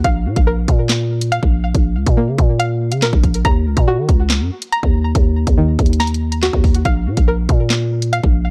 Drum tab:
HH |x--------x--------x-----x--------x--x-----------|x--------x--------x-----x--------x--x-----x--x--|x--------x--------x-----x--------x--x-----------|x--------x--------x-x-x-x-x-x----x--x-----o--x--|
CP |------------------------x-----------------------|------------------------------------x-----------|------------------------x-----------------------|------------------------------------x-----------|
SD |------------------------o-----------------------|------------------------------------o-----------|------------------------o-----------------------|------------------------o-----------o-----------|
BD |o--------o--------o--------------------o--------|o--------o--------o--------------------o--o-----|o--------o--------o--------------------o--------|o--------o--------o--------------------o--o-----|

HH |x--------x--------x-----x--------x--x-----------|
CP |------------------------x-----------------------|
SD |------------------------o-----------------------|
BD |o--------o--------o--------------------o--------|